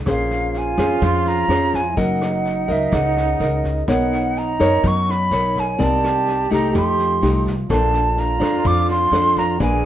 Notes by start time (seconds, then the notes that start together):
0.06 A#1 A#3 C#4 F4 G#4 C5 F5, kick, cross-stick, snare, shaker
0.31 snare, shaker
0.54 G#5, snare, shaker
0.78 F2 C#4 G#4 C5, kick, cross-stick, snare, shaker
1.01 F2 F3 C6, kick, snare, shaker
1.26 A#5, snare, shaker
1.49 F2 C#4 G#4 C5, cross-stick, snare, shaker
1.73 G#5, kick, snare, shaker
1.89 E4
1.96 F#1 F#3 D#4 A#4 D#5 F#5, kick, snare, shaker
2.21 cross-stick, snare, shaker
2.45 snare, shaker
2.68 C#2 A#4 D#5 E5, kick, snare, shaker
2.91 C#2 C#3 F#5, kick, cross-stick, snare, shaker
3.17 snare, shaker
3.40 C#2 A#4 D#5, snare, shaker
3.64 kick, snare, shaker
3.87 B1 B3 D#4 A#4 C#5 F#5, kick, cross-stick, snare, shaker
4.13 snare, shaker
4.36 A#5, snare, shaker
4.59 F#2 D#4 A#4 C#5, kick, cross-stick, snare, shaker
4.83 F#2 F#3, kick, snare, shaker
4.87 C#6
5.08 B5, snare, shaker
5.31 B1 D#4 A#4 C#5, cross-stick, snare, shaker
5.56 kick, snare, shaker
5.60 G#5
5.78 C2 C4 D#4 G4 A#4 D5, kick, snare, shaker
5.83 A5
6.03 cross-stick, snare, shaker
6.26 snare, shaker
6.50 C2 A3 D#4 G4 A#5, kick, snare, shaker
6.73 F2 F3 G4, kick, cross-stick, snare, shaker
6.77 C6
6.98 snare, shaker
7.21 C2 A3 D#4 G4, snare, shaker
7.46 kick, snare, shaker
7.69 A#1 A#3 D4 F4 A4 C5 A5, kick, cross-stick, snare, shaker
7.93 snare, shaker
8.17 A#5, snare, shaker
8.40 F2 D4 A4 C5, kick, cross-stick, snare, shaker
8.64 F2 F3 D6, kick, snare, shaker
8.89 C6, snare, shaker
9.12 F2 D4 A4 C5, cross-stick, snare, shaker
9.36 A#5, kick, snare, shaker
9.59 A#1 A#3 D4 G#4 B4 G#5, kick, snare, shaker